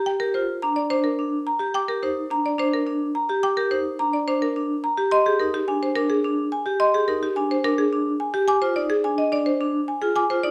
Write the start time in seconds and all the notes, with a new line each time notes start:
Already playing: G4
0.06 G5
0.20 G4 A#4
0.34 F4 C5
0.62 D4 A#5
0.76 D5
0.90 D4 C5
1.04 A#4
1.19 D4
1.47 A#5
1.59 G4
1.74 G5 D6
1.88 G4 A#4
2.03 D#4 C5
2.31 D4 A#5
2.46 D5
2.58 D4 C5
2.74 A#4
2.87 D4
3.15 A#5
3.29 G4
3.43 G5 D6
3.57 G4 A#4
3.71 D#4 C5
3.99 D4 A#5
4.13 D5
4.28 D4 C5
4.42 A#4
4.56 D4
4.84 A#5
4.98 G4
5.11 D#5 C6
5.26 G4 G#4
5.40 D#4 A#4
5.54 G4
5.68 D4 G#5
5.83 C5
5.96 D4 A#4
6.10 G#4
6.24 D4
6.52 G#5
6.66 G4
6.80 D#5 C6
6.94 G4 G#4
7.08 D#4 A#4
7.23 G4
7.36 D4 G#5
7.51 C5
7.64 D4 A#4
7.78 G#4
7.93 D4
8.20 G#5
8.34 G4
8.48 G#5 D6
8.62 F4 C5
8.76 D#4 D5
8.90 G#4
9.04 D4 G#5
9.18 D#5
9.32 D4 D5
9.46 C5
9.61 D4
9.88 G#5
10.02 F4 G#4
10.16 G#5 D6
10.30 F4 C5
10.43 D#4 D5